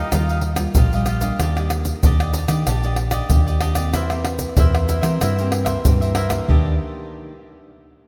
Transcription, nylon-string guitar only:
0.11 0.72 D#3 medium
0.11 0.55 G3 medium
0.11 0.55 A#3 medium
0.11 0.55 F4 medium
0.56 0.85 G3 medium
0.56 0.85 A#3 medium
0.56 0.86 F4 medium
0.76 1.36 A#2 medium
0.93 1.19 G3 medium
0.93 1.19 A#3 medium
0.93 1.20 F4 medium
1.20 1.39 G3 medium
1.20 1.54 A#3 medium
1.20 1.55 D4 medium
1.40 2.00 D#3 medium
1.55 1.98 A#3 medium
1.55 1.98 D4 medium
1.55 1.99 G4 medium
2.02 2.63 A#2 soft
2.02 2.33 A#3 soft
2.02 2.33 D4 soft
2.02 2.33 G4 medium
2.48 2.76 A#3 medium
2.48 2.76 D4 medium
2.48 2.77 G4 medium
2.67 3.27 D#3 medium
2.83 3.26 A#3 medium
2.83 3.26 D4 medium
2.83 3.26 G4 medium
3.30 3.91 A#2 medium
3.30 3.73 A#3 medium
3.30 3.73 D4 medium
3.30 3.74 G4 medium
3.75 4.04 A#3 medium
3.75 4.04 C4 medium
3.75 4.04 G4 medium
3.94 4.54 E3 medium
4.11 4.53 A#3 medium
4.11 4.53 C4 medium
4.11 4.54 G4 medium
4.58 5.18 E3 medium
4.58 5.00 A#3 medium
4.58 5.01 C4 medium
4.58 5.01 G4 medium
5.03 5.31 A#3 medium
5.03 5.31 C4 medium
5.03 5.31 G4 medium
5.23 5.83 E3 medium
5.40 5.81 A#3 medium
5.40 5.81 C4 medium
5.40 5.82 G4 medium
5.86 6.46 E3 medium
5.86 6.16 A#3 medium
5.86 6.16 C4 medium
5.86 6.16 G4 medium
6.31 6.48 A#3 medium
6.31 6.49 D4 medium
6.31 6.49 G4 medium
6.48 7.32 D#3 medium
6.48 7.32 A#3 medium
6.48 7.32 D4 medium
6.48 7.32 G4 medium

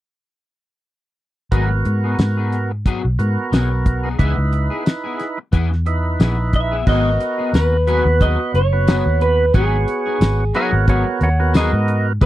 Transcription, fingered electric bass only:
1.52 1.82 G#1 medium
1.85 2.16 G#2 medium
2.19 3.00 G#2 medium
3.05 3.18 B1 medium
3.19 3.36 G#2 medium
3.52 4.15 B1 medium
4.19 4.36 C#2 medium
4.37 4.68 C#2 medium
5.53 6.16 E2 medium
6.20 6.83 A#1 medium
6.87 7.17 G#1 medium
7.53 8.02 D#2 medium
8.05 8.36 D#2 medium
8.54 9.02 F#1 medium
9.06 9.50 D#2 medium
9.54 9.84 G#1 medium
10.21 10.51 G#1 medium
10.73 11.03 G#1 medium
11.21 11.69 D#2 medium
11.73 12.17 G#2 medium
12.22 12.26 C#2 loud

